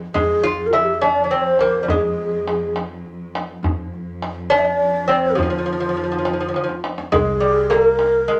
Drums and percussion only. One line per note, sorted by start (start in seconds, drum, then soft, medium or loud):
0.15 tombak dum medium
0.45 tombak ka soft
0.73 tombak tek medium
1.02 tombak tek medium
1.31 tombak ka soft
1.59 tombak tek medium
1.88 tombak dum medium
2.18 tombak ka soft
2.48 tombak tek medium
2.76 tombak tek medium
3.06 tombak ka soft
3.35 tombak tek medium
3.64 tombak dum medium
3.94 tombak ka soft
4.22 tombak tek medium
4.52 tombak tek medium
4.81 tombak ka soft
5.09 tombak tek medium
5.38 tombak dum medium
5.68 tombak ka soft
6.25 tombak tek medium
6.54 tombak tek soft
6.69 tombak ka medium
6.84 tombak tek medium
6.98 tombak ka medium
7.12 tombak dum medium
7.71 tombak tek medium
7.99 tombak tek medium